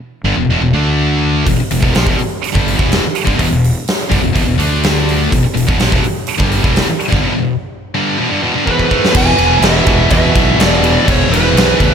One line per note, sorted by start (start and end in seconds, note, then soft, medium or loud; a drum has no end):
0.24 0.37 G1 medium
0.24 0.37 G2 medium
0.24 0.38 D3 medium
0.37 0.48 E1 medium
0.37 0.49 E2 medium
0.37 0.50 B2 medium
0.49 0.60 E1 medium
0.49 0.62 E2 medium
0.49 0.62 B2 loud
0.61 0.73 E1 medium
0.61 0.75 E2 medium
0.61 0.73 B2 medium
0.73 1.42 D2 medium
0.73 1.46 D3 medium
0.73 1.46 A3 medium
0.73 1.46 D4 medium
1.46 1.58 E1 medium
1.46 1.59 E2 medium
1.46 1.59 B2 medium
1.46 kick medium
1.46 open hi-hat medium
1.58 muted fingered electric bass stroke soft
1.58 muted distorted electric guitar stroke medium
1.71 1.82 E1 medium
1.71 1.81 E2 medium
1.71 1.82 B2 medium
1.71 open hi-hat medium
1.82 1.94 E1 medium
1.82 1.94 E2 medium
1.82 1.94 B2 loud
1.82 kick medium
1.94 2.06 A#1 medium
1.94 2.06 A#2 medium
1.94 2.06 F3 loud
1.94 snare loud
1.94 open hi-hat medium
2.06 2.18 E1 medium
2.06 2.17 E2 medium
2.06 2.19 B2 medium
2.06 kick loud
2.19 muted distorted electric guitar stroke medium
2.19 muted fingered electric bass stroke soft
2.19 open hi-hat medium
2.44 open hi-hat medium
2.54 2.77 G1 medium
2.54 2.78 G2 medium
2.54 2.78 D3 medium
2.54 2.78 G3 medium
2.54 kick loud
2.68 open hi-hat medium
2.78 3.01 E1 medium
2.78 3.00 E2 medium
2.78 3.02 B2 medium
2.78 3.03 E3 medium
2.78 kick loud
2.92 snare loud
2.92 open hi-hat medium
3.01 muted distorted electric guitar stroke medium
3.01 muted fingered electric bass stroke soft
3.15 open hi-hat medium
3.25 3.38 G1 medium
3.25 3.36 G2 medium
3.25 3.36 D3 medium
3.25 kick loud
3.36 3.50 E1 medium
3.36 3.47 E2 medium
3.36 3.46 B2 medium
3.36 kick medium
3.36 open hi-hat medium
3.47 3.73 E1 medium
3.47 3.69 E2 medium
3.47 3.68 B2 medium
3.64 open hi-hat medium
3.88 snare loud
3.88 open hi-hat medium
4.10 4.23 G1 medium
4.10 4.21 G2 medium
4.10 4.22 D3 medium
4.10 kick medium
4.10 open hi-hat medium
4.22 4.35 E1 medium
4.22 4.31 E2 medium
4.22 4.32 B2 medium
4.33 4.46 E1 medium
4.33 4.43 E2 medium
4.33 4.44 B2 loud
4.33 kick medium
4.33 open hi-hat medium
4.44 4.57 E1 medium
4.44 4.58 E2 medium
4.44 4.58 B2 medium
4.58 5.27 D2 medium
4.58 5.30 D3 medium
4.58 5.30 A3 medium
4.58 5.30 D4 loud
4.58 open hi-hat medium
4.83 snare loud
4.83 open hi-hat medium
5.09 open hi-hat soft
5.31 5.43 E1 medium
5.31 5.42 E2 medium
5.31 5.43 B2 medium
5.31 kick medium
5.31 open hi-hat medium
5.43 muted distorted electric guitar stroke medium
5.43 muted fingered electric bass stroke soft
5.55 5.67 E1 medium
5.55 5.65 E2 medium
5.55 5.67 B2 medium
5.55 open hi-hat medium
5.67 5.78 E1 medium
5.67 5.78 E2 medium
5.67 5.79 B2 loud
5.67 kick loud
5.78 5.90 A#1 loud
5.78 5.91 A#2 medium
5.78 5.91 F3 medium
5.78 snare loud
5.78 open hi-hat medium
5.91 6.02 E1 medium
5.91 6.01 E2 medium
5.91 6.03 B2 medium
5.91 kick loud
6.02 muted distorted electric guitar stroke medium
6.02 muted fingered electric bass stroke soft
6.02 open hi-hat medium
6.27 open hi-hat medium
6.38 6.62 G1 medium
6.38 6.62 G2 medium
6.38 6.62 D3 medium
6.38 6.63 G3 loud
6.38 kick loud
6.52 open hi-hat medium
6.63 6.86 E1 medium
6.63 6.86 E2 medium
6.63 6.87 B2 medium
6.63 6.87 E3 loud
6.63 kick loud
6.76 snare loud
6.76 open hi-hat medium
6.86 muted fingered electric bass stroke soft
6.86 muted distorted electric guitar stroke medium
7.00 open hi-hat medium
7.08 7.23 G1 medium
7.08 7.21 G2 medium
7.08 7.22 D3 medium
7.12 kick loud
7.22 7.33 E2 medium
7.22 7.34 B2 medium
7.34 7.54 E2 medium
7.34 7.54 B2 medium
7.95 8.18 G2 medium
7.95 8.19 D3 medium
7.95 8.19 G3 medium
8.19 8.30 E2 medium
8.19 8.31 B2 loud
8.31 8.42 G2 medium
8.31 8.43 D3 loud
8.43 8.54 E2 medium
8.43 8.55 B2 loud
8.55 8.64 G2 medium
8.55 8.66 D3 medium
8.65 8.89 E2 medium
8.65 9.13 G#2 medium
8.65 8.88 B2 loud
8.65 8.88 E3 medium
8.65 9.16 B4 medium
8.65 kick medium
8.79 kick medium
8.89 9.12 A2 medium
8.89 9.11 E3 medium
8.89 9.14 A3 loud
8.89 kick medium
9.05 snare medium
9.12 9.34 E1 medium
9.12 9.36 E2 medium
9.12 9.36 B2 medium
9.12 9.37 E3 loud
9.12 9.59 E3 medium
9.12 kick loud
9.12 crash loud
9.12 crash medium
9.17 9.66 G#5 loud
9.36 9.57 E1 medium
9.36 9.60 E2 medium
9.36 9.60 B2 medium
9.36 9.61 E3 medium
9.36 crash medium
9.61 9.81 E1 medium
9.61 9.84 E2 medium
9.61 9.85 B2 medium
9.61 10.08 B2 medium
9.61 9.86 E3 medium
9.61 snare loud
9.61 crash medium
9.65 10.10 E5 loud
9.84 10.06 E1 medium
9.84 10.07 E2 medium
9.84 10.08 B2 loud
9.84 10.09 E3 loud
9.84 kick medium
9.84 crash medium
10.08 10.31 E2 medium
10.08 10.30 E2 medium
10.08 10.31 B2 loud
10.08 10.55 B2 medium
10.08 10.32 E3 medium
10.08 10.60 E5 loud
10.08 kick medium
10.08 crash medium
10.32 10.54 B1 medium
10.32 10.55 E2 medium
10.32 10.56 B2 loud
10.32 10.57 E3 loud
10.32 kick medium
10.32 crash medium
10.56 10.97 E1 medium
10.56 10.81 E2 medium
10.56 10.82 B2 medium
10.56 11.04 B2 medium
10.56 10.83 E3 loud
10.56 11.09 D5 medium
10.56 crash medium
10.61 snare loud
10.82 11.05 E2 medium
10.82 11.06 B2 loud
10.82 11.07 E3 medium
10.82 crash medium
11.06 11.26 E1 medium
11.06 11.31 E2 medium
11.06 11.30 G#2 medium
11.06 11.31 B2 loud
11.06 11.33 E3 loud
11.06 11.33 C#5 medium
11.06 kick loud
11.06 crash medium
11.30 11.49 E1 medium
11.30 11.56 E2 medium
11.30 11.94 G#2 medium
11.30 11.57 B2 medium
11.30 11.58 E3 medium
11.30 11.94 B4 medium
11.30 crash medium
11.53 11.73 B1 medium
11.53 11.78 E2 medium
11.53 crash medium
11.58 11.79 B2 medium
11.58 11.81 E3 loud
11.58 snare loud
11.79 11.94 D2 medium
11.79 11.94 E2 loud
11.79 11.94 B2 loud
11.79 11.94 E3 loud
11.79 kick medium
11.79 crash medium